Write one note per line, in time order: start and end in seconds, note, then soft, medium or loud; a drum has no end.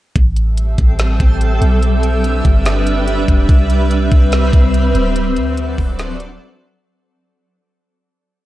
0.16 0.76 A1 loud
0.16 5.12 G3 medium
0.16 1.81 C4 medium
0.16 1.81 A4 medium
0.16 5.12 E5 medium
0.16 1.81 G5 medium
0.16 kick loud
0.16 closed hi-hat medium
0.36 closed hi-hat medium
0.57 closed hi-hat medium
0.78 1.18 A1 loud
0.78 kick medium
0.78 closed hi-hat medium
0.99 snare loud
0.99 closed hi-hat medium
1.20 1.60 A1 loud
1.20 kick loud
1.20 closed hi-hat medium
1.41 closed hi-hat medium
1.61 2.42 B1 loud
1.61 closed hi-hat medium
1.82 3.47 D4 medium
1.82 3.47 G4 medium
1.82 5.12 B4 medium
1.82 5.12 E5 medium
1.82 closed hi-hat medium
2.03 closed hi-hat medium
2.24 closed hi-hat medium
2.45 3.25 G1 loud
2.45 kick medium
2.45 closed hi-hat medium
2.66 snare loud
2.66 closed hi-hat medium
2.87 closed hi-hat medium
3.08 closed hi-hat medium
3.28 3.48 E1 loud
3.28 kick medium
3.28 closed hi-hat medium
3.49 4.09 C2 loud
3.49 6.79 C4 medium
3.49 5.14 C4 medium
3.49 5.14 B4 medium
3.49 kick loud
3.49 closed hi-hat medium
3.70 closed hi-hat medium
3.91 closed hi-hat medium
4.12 4.52 C2 loud
4.12 kick medium
4.12 closed hi-hat medium
4.32 snare loud
4.32 closed hi-hat medium
4.53 4.93 C2 loud
4.53 kick loud
4.53 closed hi-hat medium
4.74 closed hi-hat medium
4.95 5.38 D1 loud
4.95 closed hi-hat medium
5.16 6.81 F#3 medium
5.16 6.81 D4 medium
5.16 6.81 A4 medium
5.16 6.81 C5 medium
5.16 6.81 D5 medium
5.16 6.81 F#5 medium
5.16 closed hi-hat medium
5.36 5.76 D2 loud
5.36 closed hi-hat medium
5.57 closed hi-hat medium
5.78 6.38 D1 loud
5.78 kick medium
5.78 open hi-hat soft
5.99 snare loud
5.99 closed hi-hat medium
6.20 closed hi-hat medium